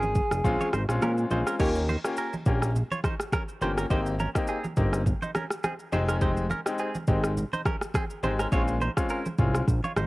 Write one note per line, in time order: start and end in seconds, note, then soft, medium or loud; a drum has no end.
0.00 0.21 G#1 medium
0.00 0.70 G#4 medium
0.00 high conga medium
0.00 shaker medium
0.15 kick medium
0.15 high conga medium
0.15 low conga medium
0.15 shaker medium
0.31 0.42 F1 medium
0.31 cross-stick loud
0.31 shaker medium
0.44 0.58 A#1 loud
0.44 0.67 G#3 medium
0.44 0.67 C4 medium
0.44 0.67 C#4 medium
0.44 0.67 F4 loud
0.44 kick medium
0.44 low conga medium
0.44 shaker medium
0.61 0.69 F4 soft
0.61 0.68 C#5 medium
0.61 high conga medium
0.61 shaker medium
0.73 0.86 G#1 medium
0.73 0.83 D#4 medium
0.73 0.83 C5 medium
0.73 cross-stick loud
0.73 high conga medium
0.73 shaker medium
0.89 1.00 A#1 medium
0.89 1.28 G#3 medium
0.89 1.28 C4 medium
0.89 1.28 C#4 medium
0.89 1.28 F4 medium
0.89 cross-stick medium
0.89 shaker medium
1.02 1.26 A#2 medium
1.02 1.12 C#4 medium
1.02 1.12 A#4 medium
1.02 cross-stick loud
1.02 high conga medium
1.02 shaker medium
1.18 shaker medium
1.31 1.44 A#1 medium
1.31 1.58 G#3 medium
1.31 1.58 C4 medium
1.31 1.58 C#4 medium
1.31 1.41 D#4 medium
1.31 1.58 F4 medium
1.31 1.40 C5 medium
1.31 high conga medium
1.31 low conga medium
1.31 shaker medium
1.47 1.55 C#4 medium
1.47 1.55 A#4 medium
1.47 cross-stick medium
1.47 shaker medium
1.60 1.97 D#2 loud
1.60 1.82 A#3 medium
1.60 1.82 C#4 medium
1.60 1.82 F4 medium
1.60 1.82 G4 medium
1.60 1.70 G4 medium
1.60 1.69 C#5 loud
1.60 kick loud
1.60 crash medium
1.60 low conga medium
1.60 shaker medium
1.75 shaker medium
1.89 1.99 D#4 medium
1.89 1.98 C5 medium
1.89 high conga medium
1.89 shaker medium
2.04 2.25 A#3 medium
2.04 2.25 C#4 medium
2.04 2.25 F4 medium
2.04 2.26 G4 medium
2.04 cross-stick medium
2.04 shaker loud
2.17 2.35 C#4 medium
2.17 2.34 A#4 medium
2.17 shaker medium
2.33 high conga medium
2.33 shaker soft
2.46 2.83 A#1 medium
2.46 2.69 A#3 medium
2.46 2.69 C#4 medium
2.46 2.69 F4 medium
2.46 2.69 G4 medium
2.46 kick medium
2.46 high conga soft
2.46 low conga medium
2.46 shaker medium
2.62 cross-stick medium
2.62 shaker medium
2.76 low conga medium
2.76 shaker medium
2.91 2.99 F4 medium
2.91 2.99 C#5 medium
2.91 high conga medium
2.91 shaker medium
3.04 3.14 D#4 medium
3.04 3.13 C5 medium
3.04 kick medium
3.04 cross-stick loud
3.04 high conga medium
3.04 shaker medium
3.20 cross-stick medium
3.20 shaker medium
3.33 3.43 C#4 medium
3.33 3.42 A#4 medium
3.33 kick loud
3.33 cross-stick loud
3.33 high conga medium
3.33 shaker medium
3.48 shaker medium
3.61 3.85 G1 medium
3.61 3.84 A#3 medium
3.61 3.84 C#4 medium
3.61 3.72 D#4 medium
3.61 3.84 F4 medium
3.61 3.84 G4 medium
3.61 3.71 C5 medium
3.61 high conga medium
3.61 low conga medium
3.61 shaker medium
3.78 3.86 C#4 medium
3.78 3.85 A#4 medium
3.78 cross-stick medium
3.78 shaker medium
3.90 4.27 G#1 loud
3.90 4.13 A#3 medium
3.90 4.13 C4 medium
3.90 4.13 D#4 medium
3.90 4.00 D#4 medium
3.90 4.13 G4 loud
3.90 4.00 C5 loud
3.90 kick loud
3.90 low conga medium
3.90 shaker medium
4.06 shaker medium
4.20 4.29 C#4 medium
4.20 4.29 A#4 medium
4.20 high conga medium
4.20 shaker medium
4.35 4.56 A#3 medium
4.35 4.56 C4 medium
4.35 4.56 D#4 medium
4.35 4.56 G4 medium
4.35 kick loud
4.35 cross-stick loud
4.35 shaker loud
4.47 4.66 C4 medium
4.47 4.65 G#4 medium
4.47 shaker medium
4.64 high conga medium
4.64 shaker soft
4.76 5.14 G1 loud
4.76 4.99 A#3 medium
4.76 4.99 C4 medium
4.76 5.00 D#4 medium
4.76 5.00 G4 medium
4.76 kick medium
4.76 mid tom medium
4.76 high conga medium
4.76 low conga medium
4.76 shaker medium
4.93 cross-stick medium
4.93 shaker loud
5.06 kick medium
5.06 low conga medium
5.06 shaker medium
5.22 5.30 D#4 medium
5.22 5.30 C5 medium
5.22 high conga medium
5.22 shaker medium
5.35 5.45 C#4 medium
5.35 5.44 A#4 medium
5.35 cross-stick loud
5.35 high conga medium
5.35 shaker medium
5.50 cross-stick medium
5.50 shaker medium
5.64 5.74 C4 medium
5.64 5.73 G#4 medium
5.64 cross-stick loud
5.64 high conga medium
5.64 shaker medium
5.79 shaker medium
5.92 6.53 F1 medium
5.92 6.19 G#3 loud
5.92 6.19 C4 medium
5.92 6.19 D#4 medium
5.92 6.03 D#4 medium
5.92 6.19 G4 loud
5.92 6.02 C5 medium
5.92 high conga medium
5.92 low conga medium
5.92 shaker medium
6.08 6.17 C#4 medium
6.08 6.16 A#4 medium
6.08 cross-stick medium
6.08 shaker medium
6.21 6.44 G#3 medium
6.21 6.44 C4 medium
6.21 6.44 D#4 medium
6.21 6.31 D#4 medium
6.21 6.44 G4 medium
6.21 6.31 C5 loud
6.21 kick loud
6.21 low conga medium
6.21 shaker medium
6.37 shaker medium
6.50 6.60 C#4 medium
6.50 6.60 A#4 medium
6.50 high conga medium
6.50 shaker medium
6.66 6.87 G#3 medium
6.66 6.87 C4 medium
6.66 6.87 D#4 medium
6.66 6.87 G4 medium
6.66 cross-stick medium
6.66 shaker loud
6.78 6.96 C4 medium
6.78 6.96 G#4 medium
6.78 shaker medium
6.95 high conga medium
6.95 shaker medium
7.07 7.45 G#1 loud
7.07 7.30 G#3 medium
7.07 7.30 C4 medium
7.07 7.30 D#4 medium
7.07 7.30 G4 medium
7.07 kick loud
7.07 mid tom medium
7.07 high conga medium
7.07 low conga medium
7.07 shaker medium
7.24 cross-stick loud
7.24 shaker loud
7.37 low conga medium
7.37 shaker medium
7.53 7.61 D#4 medium
7.53 7.60 C5 medium
7.53 high conga medium
7.53 shaker medium
7.65 7.76 C#4 medium
7.65 7.75 A#4 medium
7.65 kick medium
7.65 cross-stick loud
7.65 high conga medium
7.65 shaker medium
7.81 cross-stick medium
7.81 shaker medium
7.94 8.05 C4 medium
7.94 8.04 G#4 medium
7.94 kick loud
7.94 cross-stick loud
7.94 high conga medium
7.94 shaker medium
8.10 shaker medium
8.23 8.47 G#1 loud
8.23 8.45 G#3 medium
8.23 8.46 C4 medium
8.23 8.46 D#4 medium
8.23 8.33 D#4 medium
8.23 8.46 G4 medium
8.23 8.33 C5 medium
8.23 high conga medium
8.23 low conga medium
8.23 shaker medium
8.39 8.48 C#4 medium
8.39 8.47 A#4 medium
8.39 cross-stick medium
8.39 shaker medium
8.52 8.89 A#1 loud
8.52 8.74 G#3 medium
8.52 8.74 C4 medium
8.52 8.75 C#4 medium
8.52 8.75 F4 loud
8.52 8.62 F4 medium
8.52 8.62 C#5 loud
8.52 kick loud
8.52 low conga medium
8.52 shaker medium
8.68 shaker medium
8.81 8.91 D#4 medium
8.81 8.90 C5 medium
8.81 high conga medium
8.81 shaker medium
8.97 9.18 G#3 medium
8.97 9.18 C4 medium
8.97 9.18 C#4 medium
8.97 9.18 F4 medium
8.97 kick loud
8.97 cross-stick loud
8.97 shaker loud
9.09 9.27 C#4 medium
9.09 9.27 A#4 medium
9.09 shaker medium
9.26 high conga medium
9.26 shaker medium
9.38 9.62 C2 loud
9.38 9.61 G#3 medium
9.38 9.61 C4 medium
9.38 9.61 C#4 medium
9.38 9.61 F4 medium
9.38 kick loud
9.38 mid tom medium
9.38 high conga soft
9.38 low conga medium
9.38 shaker medium
9.55 cross-stick medium
9.55 shaker medium
9.68 9.81 A#1 loud
9.68 kick medium
9.68 low conga medium
9.68 shaker medium
9.84 9.92 F4 medium
9.84 9.91 C#5 medium
9.84 high conga medium
9.84 shaker medium
9.96 10.07 G#1 loud
9.96 10.06 D#4 medium
9.96 10.06 C5 medium
9.96 cross-stick loud
9.96 high conga medium
9.96 shaker medium